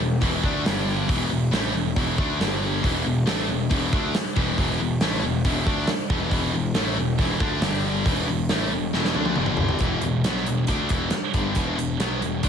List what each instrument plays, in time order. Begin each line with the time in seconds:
0.00 picked electric bass E1, distorted electric guitar E2 B2
0.21 picked electric bass E1, distorted electric guitar E2 B2 E3, kick, open hi-hat
0.43 picked electric bass D2, distorted electric guitar D3 A3 D4, kick
0.65 picked electric bass G1, distorted electric guitar G2 D3 G3, snare, open hi-hat
0.78 snare
1.08 picked electric bass E1, distorted electric guitar E2 B2 E3, kick, open hi-hat
1.30 picked electric bass E1, distorted electric guitar E2 B2
1.51 picked electric bass A1, distorted electric guitar A2 E3 A3, snare, open hi-hat
1.73 picked electric bass E1, distorted electric guitar E2 B2
1.96 picked electric bass E1, distorted electric guitar E2 B2 E3, kick, open hi-hat
2.18 picked electric bass D2, distorted electric guitar D3 A3 D4, kick
2.40 picked electric bass G1, distorted electric guitar G2 D3 G3, snare, open hi-hat
2.83 picked electric bass E1, distorted electric guitar E2 B2 E3, kick, open hi-hat
3.05 picked electric bass E1, distorted electric guitar E2 B2
3.26 picked electric bass A1, distorted electric guitar A2 E3 A3, snare, open hi-hat
3.48 picked electric bass E1, distorted electric guitar E2 B2
3.70 picked electric bass E1, distorted electric guitar E2 B2 E3, kick, open hi-hat
3.92 picked electric bass D2, distorted electric guitar D3 A3 D4, kick
4.14 snare, open hi-hat
4.26 snare
4.36 picked electric bass E1, distorted electric guitar E2 B2 E3, kick
4.58 picked electric bass E1, distorted electric guitar E2 B2 E3, kick, open hi-hat
4.80 picked electric bass E1, distorted electric guitar E2 B2
5.01 picked electric bass A1, distorted electric guitar A2 E3 A3, snare, open hi-hat
5.23 picked electric bass E1, distorted electric guitar E2 B2
5.44 picked electric bass E1, distorted electric guitar E2 B2 E3, kick, open hi-hat
5.66 picked electric bass D2, distorted electric guitar D3 A3 D4, kick
5.87 snare, open hi-hat
6.10 picked electric bass E1, distorted electric guitar E2 B2 E3, kick
6.31 picked electric bass E1, distorted electric guitar E2 B2 E3, kick, open hi-hat
6.53 picked electric bass E1, distorted electric guitar E2 B2
6.75 picked electric bass A1, distorted electric guitar A2 E3 A3, snare, open hi-hat
6.98 picked electric bass E1, distorted electric guitar E2 B2
7.19 picked electric bass E1, distorted electric guitar E2 B2 E3, kick, open hi-hat
7.40 picked electric bass D2, distorted electric guitar D3 A3 D4, kick
7.62 picked electric bass G1, distorted electric guitar G2 D3 G3, snare, open hi-hat
8.06 picked electric bass E1, distorted electric guitar E2 B2 E3, kick, open hi-hat
8.28 picked electric bass E1, distorted electric guitar E2 B2
8.49 picked electric bass A1, distorted electric guitar A2 E3 A3, snare, open hi-hat
8.72 picked electric bass E1, distorted electric guitar E2 B2
8.93 picked electric bass E1, distorted electric guitar E2 B2 E3, snare
9.04 snare
9.15 picked electric bass D2, distorted electric guitar D3 A3 D4, high tom
9.26 high tom
9.36 picked electric bass G1, distorted electric guitar G2 D3 G3, mid tom
9.46 mid tom
9.57 floor tom
9.69 floor tom
9.79 picked electric bass E1, distorted electric guitar E2 B2 E3, kick, closed hi-hat
10.01 picked electric bass E1, distorted electric guitar E2 B2, closed hi-hat
10.24 picked electric bass B1, distorted electric guitar B2 F#3 B3, snare, closed hi-hat
10.37 snare
10.46 picked electric bass E1, distorted electric guitar E2 B2, closed hi-hat
10.67 picked electric bass D2, distorted electric guitar D3 A3 D4, kick, closed hi-hat
10.89 picked electric bass E1, distorted electric guitar E2 B2 E3, kick, closed hi-hat
11.10 snare, closed hi-hat
11.34 picked electric bass G1, distorted electric guitar G2 D3 G3, kick, closed hi-hat
11.55 picked electric bass E1, distorted electric guitar E2 B2 E3, kick, closed hi-hat
11.78 picked electric bass E1, distorted electric guitar E2 B2, closed hi-hat
12.00 picked electric bass B1, distorted electric guitar B2 F#3 B3, snare, closed hi-hat
12.21 picked electric bass E1, distorted electric guitar E2 B2, closed hi-hat
12.43 picked electric bass D2, distorted electric guitar D3 A3 D4, kick, closed hi-hat